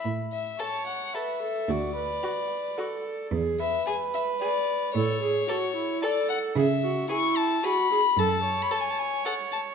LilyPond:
<<
  \new Staff \with { instrumentName = "Violin" } { \time 3/4 \key a \major \tempo 4 = 111 r8 e''8 a''8 fis''8 e''4 | d''2. | r8 e''8 gis''8 e''8 d''4 | cis''2 d''8 fis''8 |
\key cis \minor e''4 cis'''8 a''8 b''4 | \tuplet 3/2 { a''4~ a''16 b''16 a''16 gis''16 a''16 gis''8. } fis''8 a''8 | }
  \new Staff \with { instrumentName = "Viola" } { \time 3/4 \key a \major r4 cis''4 b'8 a'8 | fis'8 b'4. a'4 | gis'8 b'2~ b'8 | a'8 gis'8 fis'8 e'8 a'4 |
\key cis \minor gis'8 fis'8 e'4 fis'8 gis'8 | a'8 cis''2~ cis''8 | }
  \new Staff \with { instrumentName = "Violin" } { \time 3/4 \key a \major r4 a'4 a'4 | r4 fis'4 fis'4 | r4 gis'4 gis'4 | r4 a'4 a'4 |
\key cis \minor r4 gis'4 gis'4 | r4 a'4 a'4 | }
  \new Staff \with { instrumentName = "Cello" } { \clef bass \time 3/4 \key a \major a,4 r2 | d,4 r2 | e,4 r2 | a,4 r2 |
\key cis \minor cis4 r2 | fis,4 r2 | }
>>